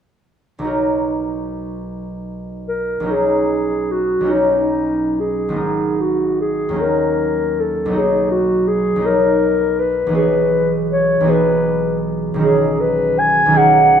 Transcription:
0.59 2.99 B1 soft
0.59 3.01 F#3 soft
0.59 3.04 D#4 soft
0.64 3.06 F#4 soft
0.64 3.12 A#4 soft
2.69 3.13 A#4 soft
3.00 4.19 B1 soft
3.00 4.21 F#3 soft
3.00 4.23 C#4 soft
3.05 4.25 D#4 soft
3.05 4.27 F#4 soft
3.11 3.93 G#4 medium
3.91 4.34 F#4 soft
4.20 5.57 B1 soft
4.20 5.58 F#3 soft
4.20 5.59 C#4 soft
4.26 5.52 D#4 soft
4.26 5.61 F#4 soft
4.33 5.22 D#4 soft
5.20 6.03 G#4 soft
5.49 6.78 G#1 soft
5.49 6.79 G#3 soft
5.49 6.79 B3 soft
5.53 6.73 D#4 soft
5.53 9.46 A#4 soft
6.01 6.40 F#4 soft
6.41 6.82 G#4 soft
6.69 7.93 D#2 soft
6.69 7.87 F#3 soft
6.69 7.95 C#4 soft
6.74 7.90 D#4 soft
6.74 7.92 F#4 soft
6.81 7.62 A#4 medium
7.61 7.99 A4 soft
7.85 8.95 B1 soft
7.85 8.96 F#3 soft
7.90 8.99 B3 soft
7.90 9.00 D#4 soft
7.90 9.02 F#4 soft
7.98 8.31 G#4 soft
8.31 8.69 F#4 medium
8.68 9.08 G#4 medium
8.96 10.05 B1 soft
8.96 12.87 F#3 soft
8.96 10.10 B3 soft
9.01 10.17 D#4 soft
9.01 10.12 F#4 soft
9.06 9.81 A#4 medium
9.79 10.15 B4 medium
10.07 11.19 B1 soft
10.07 11.21 E3 soft
10.11 11.23 B3 soft
10.11 11.24 F#4 soft
10.11 11.26 G#4 soft
10.15 10.75 B4 medium
10.92 11.32 C#5 medium
11.21 12.33 B1 soft
11.21 12.43 E3 soft
11.21 14.00 B3 soft
11.25 12.39 F#4 soft
11.25 12.41 G#4 soft
11.30 12.06 B4 medium
12.34 13.45 B1 soft
12.34 13.47 D#3 soft
12.38 13.48 C#4 soft
12.38 13.51 F#4 soft
12.38 13.53 G#4 soft
12.44 12.82 G#4 medium
12.81 13.21 B4 medium
13.19 13.59 G#5 medium
13.46 14.00 B1 soft
13.46 14.00 D#3 soft
13.46 14.00 C#4 soft
13.52 14.00 F#4 soft
13.52 14.00 G#4 soft
13.57 14.00 F#5 medium

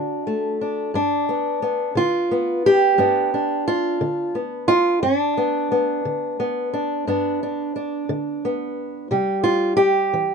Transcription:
0.00 0.54 D3 medium
0.00 0.60 D4 soft
0.00 0.95 F#4 medium
0.27 0.91 A3 soft
0.61 0.91 D4 soft
0.94 1.56 G2 medium
0.94 1.97 D4 medium
1.29 1.62 B3 soft
1.62 2.31 B3 medium
1.95 2.57 D3 medium
1.95 2.65 F4 loud
2.31 2.98 B3 soft
2.66 3.67 G4 loud
2.98 3.60 G2 medium
2.98 4.34 B3 soft
2.98 3.33 D4 medium
3.34 4.99 D4 soft
3.68 4.35 F4 medium
4.01 4.62 D3 medium
4.35 4.99 B3 soft
4.68 5.02 F4 loud
5.03 5.64 G2 medium
5.03 6.72 D4 medium
5.37 5.70 B3 soft
5.72 6.39 B3 medium
6.05 6.66 D3 medium
6.40 7.07 B3 soft
6.74 7.07 D4 soft
7.07 7.68 G2 medium
7.07 8.43 B3 medium
7.07 7.41 D4 soft
7.43 7.74 D4 soft
7.76 9.07 D4 soft
8.09 8.70 D3 medium
8.45 9.07 B3 soft
9.11 9.71 C3 medium
9.11 10.35 G3 medium
9.11 9.43 G4 soft
9.44 9.76 F4 loud
9.77 10.35 G4 loud
10.13 10.35 E3 medium

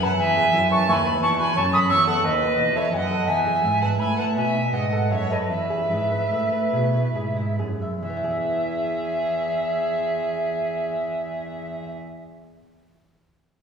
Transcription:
0.00 0.16 F#2 medium
0.00 0.18 F#2 medium
0.00 0.20 B4 medium
0.00 0.13 E5 medium
0.00 0.20 F#5 medium
0.00 0.18 A5 loud
0.19 0.53 E2 medium
0.19 0.50 E2 medium
0.19 0.71 E5 medium
0.19 0.69 G#5 loud
0.37 0.64 G#4 medium
0.54 0.85 F#2 medium
0.54 0.89 F#2 medium
0.54 0.81 E4 medium
0.71 0.88 B4 medium
0.71 0.91 A5 medium
0.71 0.77 C#6 medium
0.88 1.21 D#2 medium
0.88 1.19 D#2 medium
0.88 1.16 E5 medium
0.88 1.22 G#5 medium
0.88 0.93 C#6 medium
0.92 1.22 B5 medium
1.05 1.22 B4 medium
1.22 1.56 E2 medium
1.22 1.53 E2 medium
1.22 1.29 A5 medium
1.22 1.39 C#6 loud
1.39 1.66 F#4 medium
1.39 1.59 G#5 medium
1.39 1.56 B5 medium
1.55 1.87 F#2 medium
1.55 1.90 F#2 medium
1.55 1.83 C#4 soft
1.55 1.75 A5 medium
1.55 1.62 C#6 medium
1.73 1.89 A4 soft
1.73 1.90 B5 medium
1.73 1.79 D#6 medium
1.90 2.21 E2 medium
1.90 2.24 E2 medium
1.90 2.17 C#5 medium
1.90 2.07 C#6 medium
1.90 2.07 E6 medium
2.07 2.24 A4 soft
2.07 2.24 F#5 medium
2.07 2.26 A5 medium
2.24 2.55 D#2 medium
2.24 2.58 D#2 medium
2.24 2.78 B4 medium
2.24 2.78 D#5 medium
2.41 2.68 F#4 soft
2.58 2.92 E2 medium
2.58 2.89 E2 medium
2.58 2.86 B3 soft
2.76 2.93 A4 soft
2.76 2.92 C#5 medium
2.76 2.92 E5 medium
2.92 3.27 F#2 medium
2.92 3.24 F#2 medium
2.92 3.10 B4 soft
2.92 3.29 D#5 medium
2.92 2.97 G#5 medium
2.96 3.27 F#5 medium
3.11 3.28 A4 soft
3.27 3.65 E2 medium
3.27 3.60 E2 soft
3.27 3.81 E5 medium
3.27 3.83 G#5 medium
3.47 3.75 G#4 soft
3.63 3.99 G#2 medium
3.63 3.96 G#2 medium
3.63 3.93 E4 soft
3.81 4.00 B4 soft
3.81 3.88 F#5 medium
3.81 4.01 A5 medium
3.99 4.37 A2 medium
3.99 4.33 A2 soft
3.99 4.29 E5 soft
3.99 4.17 G#5 medium
3.99 4.17 B5 medium
4.17 4.36 B4 soft
4.17 4.25 F#5 medium
4.17 4.36 A5 medium
4.36 4.72 B2 medium
4.36 4.70 B2 soft
4.36 4.72 E5 medium
4.36 4.75 G#5 medium
4.54 4.84 D#4 soft
4.73 5.13 G#2 medium
4.73 5.07 G#2 soft
4.73 5.04 B3 soft
4.73 5.10 D#5 medium
4.73 5.13 F#5 medium
4.92 5.23 A4 soft
5.11 5.46 F#2 soft
5.11 5.50 F#2 medium
5.11 5.42 B4 soft
5.11 5.33 C#5 medium
5.11 5.30 E5 medium
5.31 5.51 A4 soft
5.31 5.49 B4 soft
5.31 5.37 D#5 medium
5.50 5.86 E2 soft
5.50 5.92 E2 medium
5.50 7.54 B4 medium
5.50 7.54 E5 medium
5.70 6.02 G#4 soft
5.90 6.31 G#2 soft
5.90 6.27 G#2 soft
5.90 6.23 E4 soft
6.12 6.32 B4 soft
6.32 6.72 A2 soft
6.32 6.69 A2 soft
6.32 6.64 E5 soft
6.52 6.85 B4 soft
6.72 7.14 B2 soft
6.72 7.11 B2 soft
6.72 7.06 G#4 soft
6.94 7.28 E4 soft
7.15 7.55 G#2 soft
7.15 7.60 G#2 soft
7.15 7.50 G#4 soft
7.37 7.72 E4 soft
7.58 8.02 F#2 soft
7.58 7.99 F#2 soft
7.58 7.94 G#4 soft
7.82 8.03 E5 soft
8.03 11.90 E2 medium
8.03 11.90 E3 soft
8.03 11.90 G#4 medium
8.03 11.90 E5 medium
8.10 11.97 B3 soft
8.17 12.04 E4 soft
8.24 12.11 G#4 soft
8.31 12.18 E5 soft

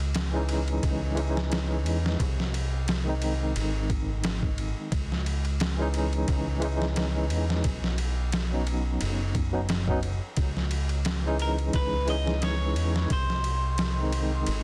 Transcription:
0.00 0.80 C#2 medium
0.00 ride soft
0.15 snare loud
0.15 ride medium
0.31 1.12 E3 medium
0.31 1.13 G#3 medium
0.31 1.14 C#4 medium
0.36 1.15 D#4 medium
0.49 ride medium
0.68 ride soft
0.83 1.86 C#2 medium
0.83 kick medium
0.83 ride medium
1.14 2.16 E3 medium
1.14 2.17 G#3 medium
1.14 2.18 C#4 medium
1.14 ride medium
1.20 2.19 D#4 medium
1.37 snare soft
1.52 snare loud
1.52 ride medium
1.86 2.16 E2 medium
1.86 ride medium
2.06 snare medium
2.20 3.53 C2 medium
2.20 kick loud
2.20 ride medium
2.40 snare soft
2.54 ride medium
2.88 snare loud
2.88 ride medium
3.04 4.89 D#3 medium
3.04 4.90 G#3 medium
3.04 4.91 C4 medium
3.09 4.92 D#4 medium
3.22 ride medium
3.56 4.73 G#1 medium
3.56 ride medium
3.90 kick medium
3.90 ride medium
4.24 snare loud
4.24 ride medium
4.42 kick medium
4.58 ride medium
4.92 6.26 C#2 medium
4.92 kick loud
4.92 ride medium
5.12 snare soft
5.26 ride medium
5.45 ride soft
5.60 snare loud
5.60 ride medium
5.77 6.58 E3 medium
5.77 6.59 G#3 medium
5.77 6.59 C#4 medium
5.82 6.60 D#4 loud
5.94 ride medium
6.13 ride soft
6.28 7.31 C#2 medium
6.28 kick loud
6.28 ride medium
6.60 7.61 E3 medium
6.60 7.62 G#3 medium
6.60 7.63 C#4 medium
6.60 ride medium
6.65 7.64 D#4 loud
6.82 snare soft
6.96 snare loud
6.96 ride medium
7.30 7.61 E2 medium
7.30 ride medium
7.50 snare medium
7.64 8.98 B1 medium
7.64 kick loud
7.64 ride medium
7.84 snare soft
7.98 ride medium
8.32 snare loud
8.32 ride medium
8.49 9.49 F#3 medium
8.49 9.50 B3 medium
8.49 9.50 C#4 medium
8.54 9.51 D#4 medium
8.67 ride medium
9.01 10.19 F#1 medium
9.01 ride medium
9.35 kick medium
9.35 ride medium
9.52 9.65 F#3 medium
9.52 9.66 B3 medium
9.52 9.66 C#4 medium
9.52 9.66 D#4 medium
9.69 snare loud
9.69 ride medium
9.87 10.00 F#3 medium
9.87 10.00 B3 medium
9.87 10.00 C#4 medium
9.87 10.01 D#4 loud
9.87 kick medium
10.03 ride medium
10.37 11.71 C#2 medium
10.37 kick loud
10.37 ride medium
10.57 snare soft
10.71 ride medium
10.89 ride soft
11.05 snare loud
11.05 ride medium
11.22 12.03 E3 medium
11.22 12.04 G#3 medium
11.22 12.05 C#4 medium
11.27 12.06 D#4 loud
11.39 11.51 A#4 medium
11.39 ride medium
11.58 ride soft
11.73 12.77 C#2 medium
11.73 12.07 B4 medium
11.73 kick loud
11.73 ride medium
12.06 13.07 E3 medium
12.06 13.08 G#3 medium
12.06 13.09 C#4 medium
12.06 ride medium
12.10 13.10 D#4 medium
12.10 12.41 D#5 loud
12.27 snare soft
12.42 13.12 C#5 loud
12.42 snare loud
12.42 ride medium
12.76 13.07 E2 medium
12.76 ride medium
12.96 snare medium
13.10 14.44 C2 loud
13.10 14.44 C5 medium
13.10 kick loud
13.10 ride medium
13.30 snare soft
13.44 ride medium
13.78 snare loud
13.78 ride medium
13.95 14.63 D#3 medium
13.95 14.63 G#3 medium
13.95 14.63 C4 medium
14.00 14.63 D#4 medium
14.12 ride medium
14.47 14.63 G#1 medium
14.47 ride medium

